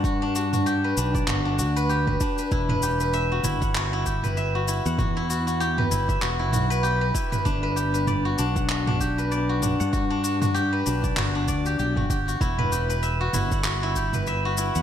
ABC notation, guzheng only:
X:1
M:4/4
L:1/16
Q:"Swing 16ths" 1/4=97
K:Em
V:1 name="Guzheng"
F D F F G B D d F D F B G B D B | E B G B e F E f F E G B e F E f | F E F F G B E e F E F B G B E B | D B G B d F D f F D G B d F D f |
F D F F G B D d F D d G G F G F | E B G B e F E f F E G B e F E f |]